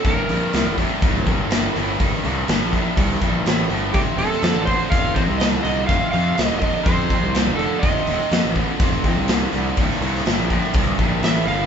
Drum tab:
HH |o-o-o-o-o-o-o-o-|o-o-o-o-o-o-o-o-|o-o-o-o-o-o-o-o-|o-o-o-o-o-o-o-o-|
SD |----o-------o---|----o-------o---|---oo-------o---|----o-------o---|
BD |o-----o-o-o-----|o-----o-o-o-----|o-----o-o-o-----|o-----o-o-o-----|

HH |o-o-o-o-o-o-o-o-|o-o-o-o-o-o-o-o-|
SD |----o-------o---|-o-oo-------o---|
BD |o-----o-o-o-----|o-----o-o-o-----|